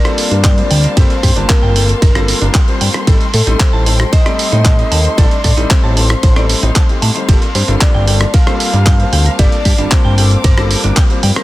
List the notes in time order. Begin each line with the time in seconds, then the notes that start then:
Already playing: A#3 D5 F5 A5 C6
0.05 G3 A#3 C4 F4 A4 C5, cross-stick, closed hi-hat
0.18 open hi-hat
0.31 G2 G3 A#3 C4 D4 F4 A#4, closed hi-hat
0.44 G5, kick, clap, closed hi-hat, ride
0.57 G3 A#3 C4 F4 C5, closed hi-hat
0.71 D2 G5, open hi-hat
0.84 A#4, closed hi-hat
0.97 G1 G3 A#3 C4 F4 G4 A4 C5, kick, closed hi-hat, ride
1.10 closed hi-hat
1.23 G2 G4, kick, open hi-hat
1.36 G1 G3 A#3 C4 D4 F4 A5, closed hi-hat
1.49 A#4, kick, clap, closed hi-hat, ride
1.63 G1 G5
1.75 G3 A#3 C4 F4 A4 G5, open hi-hat
1.89 closed hi-hat
2.02 G1 A#4, kick, closed hi-hat, ride
2.15 G3 A#3 C4 F4 A4 C5, cross-stick, closed hi-hat
2.28 open hi-hat
2.41 G1 G3 A#3 C4 D4 F4 A#4, closed hi-hat
2.54 G5, kick, clap, closed hi-hat, ride
2.68 G3 A#3 C4 F4 C5, closed hi-hat
2.81 G2 G5, open hi-hat
2.94 A#4, cross-stick, closed hi-hat
3.07 A1 G3 A3 C4 D#4 A4 G5, kick, closed hi-hat, ride
3.21 closed hi-hat
3.34 A2 A4, open hi-hat
3.46 A1 G3 A3 C4 D#4 A4, closed hi-hat
3.60 C5, kick, clap, closed hi-hat, ride
3.73 A1 A5
3.86 G3 A3 C4 D#4 A4 A5, open hi-hat
4.00 cross-stick, closed hi-hat
4.13 C5 D#5, kick, closed hi-hat, ride
4.26 G3 A3 C4 D#4 A4 D5, cross-stick, closed hi-hat
4.39 open hi-hat
4.52 A2 G3 A3 C4 D#4 C5, closed hi-hat
4.65 A5, kick, clap, closed hi-hat, ride
4.78 G3 A3 C4 D#4 D#5, closed hi-hat
4.92 D#2 A5, open hi-hat
5.05 C5, closed hi-hat
5.18 A1 G3 A3 C4 D#4 A4 D5 F5, kick, closed hi-hat, ride
5.31 closed hi-hat
5.44 A2 A4, kick, open hi-hat
5.57 A1 G3 A3 C4 D#4 A4, closed hi-hat
5.70 C5, kick, clap, closed hi-hat, ride
5.84 A1 A5
5.96 G3 A3 C4 D#4 A4 A5, open hi-hat
6.10 cross-stick, closed hi-hat
6.23 A1 C5, kick, closed hi-hat, ride
6.36 G3 A3 C4 D#4 A4 D5, cross-stick, closed hi-hat
6.49 open hi-hat
6.62 A1 G3 A3 C4 D#4 C5, closed hi-hat
6.76 A5, kick, clap, closed hi-hat, ride
6.89 G3 A3 C4 D#4 G4, closed hi-hat
7.02 A2 A5, open hi-hat
7.15 G3 A3 C4 D#4 C5, closed hi-hat
7.28 G1 G3 A#3 C4 F4 G4 A4 A5, kick, closed hi-hat, ride
7.42 closed hi-hat
7.55 G2 G4 C5, open hi-hat
7.68 G1 G3 A#3 C4 D4 F4 A4, closed hi-hat
7.81 D5, kick, clap, closed hi-hat, ride
7.94 G1 G5
8.07 G3 A#3 C4 F4 A4 G5, open hi-hat
8.21 cross-stick, closed hi-hat
8.34 A#4 F5, kick, closed hi-hat, ride
8.46 G3 A#3 C4 F4 A4 C5, cross-stick, closed hi-hat
8.60 open hi-hat
8.73 G2 G3 A#3 C4 D4 F4 A#4, closed hi-hat
8.86 G5, kick, clap, closed hi-hat, ride
8.99 G3 A#3 C4 F4 C5, closed hi-hat
9.13 D2 G5, open hi-hat
9.26 A#4, closed hi-hat
9.39 G1 G3 A#3 C4 F4 G4 A4 D5 D6, kick, closed hi-hat, ride
9.52 closed hi-hat
9.65 G2 G4, kick, open hi-hat
9.78 G1 G3 A#3 C4 D4 F4 A5, closed hi-hat
9.91 C5, kick, clap, closed hi-hat, ride
10.05 G1 G5
10.18 G3 A#3 C4 F4 A4 G5, open hi-hat
10.31 closed hi-hat
10.44 G1 A#4, kick, closed hi-hat, ride
10.57 G3 A#3 C4 F4 A4 C5, cross-stick, closed hi-hat
10.71 open hi-hat
10.84 G1 G3 A#3 C4 D4 F4 A#4, closed hi-hat
10.97 G5, kick, clap, closed hi-hat, ride
11.10 G3 A#3 C4 F4 C5, closed hi-hat
11.23 G2 G5, open hi-hat
11.36 A#4, cross-stick, closed hi-hat